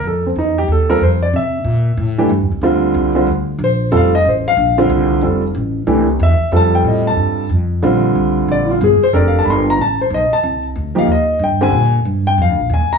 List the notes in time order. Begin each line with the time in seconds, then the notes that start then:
0.04 F2 A4
0.27 C4
0.36 E2 D#4
0.58 G4
0.68 D#2 A4
0.89 G3 C4 F4 A4 A#4
1.01 F2 C5
1.23 D5
1.33 C3 E5
1.65 A#2
1.97 A2
2.18 E3 A3 D4 G4
2.29 G2
2.41 E2
2.52 C2
2.61 D2 D3 G3 C4 F4
2.94 C2
3.15 D3 G3 C4 F4
3.27 D2
3.58 A#1
3.64 C5
3.92 F1 G3 C4 F4 A4
3.97 F5
4.15 D#5
4.24 A1
4.28 C5
4.48 F5
4.57 A#1
4.78 D3 G3 C4 F4
4.90 C2
5.21 F1 G3 C4 F4 A4
5.55 A1
5.87 C2 E3 A3 D4 G4
6.19 E2 E5
6.40 muted upright bass stroke
6.52 F2 G3 C4 F4 A4
6.56 A5
6.75 G5
6.84 A2 D#5
7.07 A5
7.17 G2
7.50 F2
7.82 A#1 D3 G3 C4 F4
8.15 C2
8.48 A#1 D5
8.66 E4
8.71 F4
8.81 G1 G#4
9.02 C5, muted upright bass stroke
9.13 F1 D4 G4 A4 A#4 D5
9.28 F5
9.39 A5
9.45 G1 B5
9.50 C6
9.70 A#5
9.78 A1 A5
10.01 C5
10.10 B1
10.14 D#5
10.31 A5, muted upright bass stroke
10.43 C2
10.76 D2
10.95 F3 A#3 D#4 G4 F5
11.07 D#2
11.12 D#5
11.39 G2
11.44 G5
11.61 D3 G3 C4 G4 G#5
11.72 A#2
12.05 G2
12.27 G5
12.38 F2 F5
12.49 D2
12.59 A#1
12.70 D#2 G#5
12.90 A#5, muted upright bass stroke